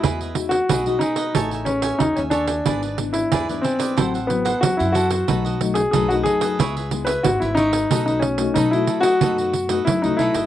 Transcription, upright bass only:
\new Staff \with { instrumentName = "Upright bass" } { \clef bass \time 4/4 \key e \major \tempo 4 = 92 e,4 b,,8 r8 a,,4 e,16 dis,8. | gis,,4 e,8 r8 a,,4 e,16 fis,8. | b,,4 b,,8 r8 cis,4 gis,,16 gis,,8. | b,,4 b,8 r8 fis,4 fis,16 cis,16 b,,16 a,,16 | }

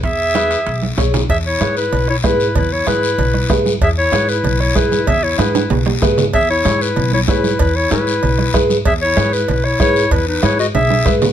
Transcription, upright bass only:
\new Staff \with { instrumentName = "Upright bass" } { \clef bass \time 4/4 \key e \major \tempo 4 = 190 e,2 b,,4 b,,4 | e,4 gis,4 b,,4 gis,4 | e,4 gis,4 b,,4 gis,4 | e,4 gis,4 b,,4 gis,4 |
e,4 gis,4 b,,4 gis,4 | e,4 gis,4 b,,4 gis,4 | e,4 gis,4 b,,4 gis,4 | e,4 gis,4 b,,4 gis,4 |
e,4 gis,4 b,,4 gis,4 | }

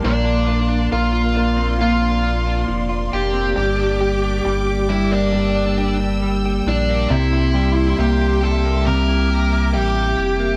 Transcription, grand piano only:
\new Staff \with { instrumentName = "Grand piano" } { \clef bass \time 4/4 \key bes \lydian \tempo 4 = 68 bes8 bes8 bes8 bes8 bes2 | g8 g8 g8 g8 g2 | c8 g8 bes8 g8 c2 | }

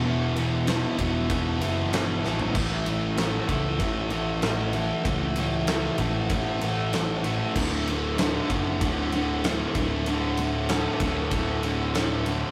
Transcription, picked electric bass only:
\new Staff \with { instrumentName = "Picked electric bass" } { \clef bass \time 4/4 \key a \mixolydian \tempo 4 = 96 e,,4. e,,8 e,,8 fis,,8 g,,8 a,,8 | a,,4. cis,8 a,,2 | cis,4. a,,8 a,,2 | d,,4. fis,,8 d,,4. d,,8~ |
d,,4. d,,8 d,,2 | }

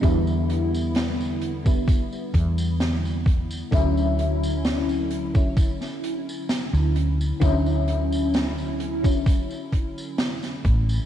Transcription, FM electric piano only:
\new Staff \with { instrumentName = "FM electric piano" } { \time 4/4 \key d \major \tempo 4 = 65 <d g b e'>4.~ <d g b e'>16 <d g b e'>2~ <d g b e'>16 | <d fis cis' e'>4.~ <d fis cis' e'>16 <d fis cis' e'>2~ <d fis cis' e'>16 | <d fis cis' e'>4.~ <d fis cis' e'>16 <d fis cis' e'>2~ <d fis cis' e'>16 | }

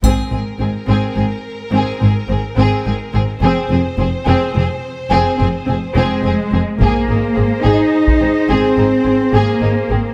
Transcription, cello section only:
\new Staff \with { instrumentName = "Cello section" } { \clef bass \time 12/8 \key aes \mixolydian \tempo 4. = 71 << { r1. | r1 r8 aes4. | bes4. ees'4. c'4. bes4. | } \\ { aes,8 aes,8 aes,8 aes,8 aes,8 r8 aes,8 aes,8 aes,8 aes,8 aes,8 aes,8 | f,8 f,8 f,8 f,8 f,8 r8 f,8 f,8 f,8 f,8 f,8 f,8 | r1. | } >> }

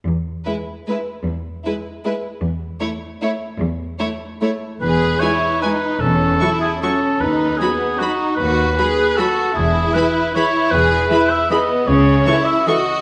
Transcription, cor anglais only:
\new Staff \with { instrumentName = "Cor anglais" } { \time 3/4 \key e \major \tempo 4 = 152 r2. | r2. | r2. | r2. |
b'4 cis''4 b'4 | a'4. gis'8 a'4 | b'4 gis'4 fis'4 | b'2 a'4 |
gis'4 b'4 cis''4 | b'4. e''8 dis''4 | cis''4. e''8 dis''4 | }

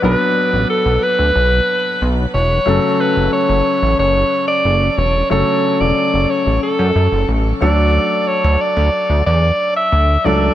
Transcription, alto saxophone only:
\new Staff \with { instrumentName = "Alto saxophone" } { \time 4/4 \key fis \phrygian \tempo 4 = 91 b'4 a'8 b'4. r8 cis''8~ | cis''8 b'8 cis''4 cis''8. d''8. cis''8 | cis''8. d''8. cis''8 a'4 r8 d''8~ | d''8 cis''8 d''4 d''8. e''8. d''8 | }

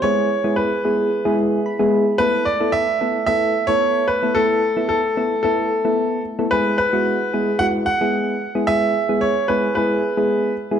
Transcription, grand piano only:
\new Staff \with { instrumentName = "Grand piano" } { \time 4/4 \key a \major \tempo 4 = 111 cis''4 b'4. r4. | b'8 d''8 e''4 e''8. cis''8. b'8 | a'4 a'4 a'4. r8 | b'8 b'4. fis''8 fis''4. |
e''4 cis''8 b'8 b'4. r8 | }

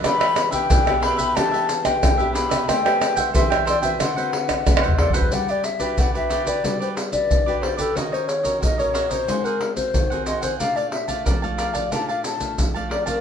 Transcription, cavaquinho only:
\new Staff \with { instrumentName = "Cavaquinho" } { \time 4/4 \key g \major \tempo 4 = 91 <d' g' b' e''>16 <g' b' e''>16 r16 <g' b' e''>16 <d' g' b' e''>16 <g' b' e''>16 <d' g' b' e''>16 <g' b' e''>16 <d' g' b' e''>16 <g' b' e''>16 r8. <g' b' e''>16 <d' g' b' e''>16 <g' b' e''>16 | <a' c'' e'' g''>16 <c'' e'' g''>16 r16 <c'' e'' g''>16 <a' c'' e'' g''>16 <c'' e'' g''>16 <a' c'' e'' g''>16 <c'' e'' g''>16 <d' a' c'' fis''>16 <a' c'' fis''>16 r8. <a' c'' fis''>16 <d' a' c'' fis''>16 <a' c'' fis''>16 | <fis' g' b' d''>16 <g' b' d''>16 r16 <g' b' d''>16 <fis' g' b' d''>16 <g' b' d''>16 <fis' g' b' d''>16 <g' b' d''>16 <fis' g' b' d''>16 <g' b' d''>16 r8. <g' b' d''>16 <fis' g' b' d''>16 <g' b' d''>16 | <ges' bes' des'' ees''>16 <bes' des'' ees''>16 r16 <bes' des'' ees''>16 <ges' bes' des'' ees''>16 <bes' des'' ees''>16 <ges' bes' des'' ees''>16 <bes' des'' ees''>16 <ges' aes' c'' ges''>16 <aes' c'' ges''>16 r8. <aes' c'' ges''>16 <ges' aes' c'' ges''>16 <aes' c'' ges''>16 |
<bes' d'' f'' a''>16 <d'' f'' a''>16 r16 <d'' f'' a''>16 <bes' d'' f'' a''>16 <d'' f'' a''>16 <bes' d'' f'' a''>16 <d'' f'' a''>16 <bes' d'' f'' a''>16 <d'' f'' a''>16 r8. <d'' f'' a''>16 <bes' d'' f'' a''>16 <d'' f'' a''>16 | }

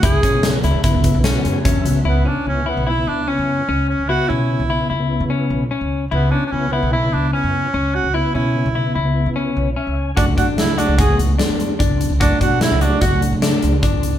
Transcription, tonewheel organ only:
<<
  \new Staff \with { instrumentName = "Tonewheel organ" } { \time 5/4 \key cis \phrygian \tempo 4 = 148 r2. r8 gis''8 e''4 | r1 r4 | r1 r4 | r1 r4 |
r2. r8 cis''8 e''8 gis''8 | r1 r4 | r1 r4 | }
  \new Staff \with { instrumentName = "Tonewheel organ" } { \time 5/4 \key cis \phrygian r8. <cis b e'>4 r16 <cis b e'>4 r16 <cis b fis'>4 r16 <cis b fis'>8 | <cis b e'>8. r16 <cis b e'>8 <cis b e'>8 r16 <cis b e'>4. r4 r16 | <cis b fis'>8. r16 <cis b e'>8 <cis b e'>8 r16 <cis b e'>4. r4 r16 | <cis b e'>8. r16 <cis b e'>8 <cis b e'>8 r16 <cis b e'>4. r4 r16 |
<cis b e'>8. r16 <cis b e'>8 <cis b e'>8 r16 <cis b e'>4. r4 r16 | <fis a d'>8. r16 <fis a d'>8 <fis a d'>8 r16 <fis a b>4. r4 r16 | <fis a d'>8. r16 <fis a cis'>8 <fis a d'>8 r16 <fis a d'>4. r4 r16 | }
>>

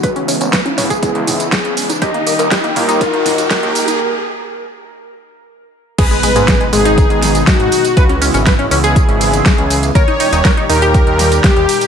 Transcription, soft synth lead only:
\new Staff \with { instrumentName = "Soft synth lead" } { \time 4/4 \key gis \minor \tempo 4 = 121 fis'8 r2. r8 | dis''4. ais'4. ais'4~ | ais'8 r2. r8 | b'4. gis'4. fis'4~ |
fis'8 r2. r8 | cis''4. ais'4. g'4 | }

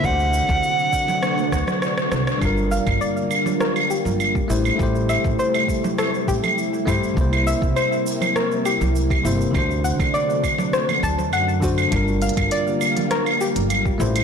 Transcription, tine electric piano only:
\new Staff \with { instrumentName = "Tine electric piano" } { \time 4/4 \key g \dorian \tempo 4 = 101 <d d' fis' c''>2.~ <d d' fis' c''>8 r8 | <g d' f' bes'>2.~ <g d' f' bes'>8 <a e' g' c''>8 | <a e' g' c''>2.~ <a e' g' c''>8 <a e' g' c''>8 | <c bes e' c''>2.~ <c bes e' c''>8 <c bes e' c''>8 |
<d d' fis' c''>2.~ <d d' fis' c''>8 <d d' fis' c''>8 | <g d' f' bes'>2.~ <g d' f' bes'>8 <a e' g' c''>8 | }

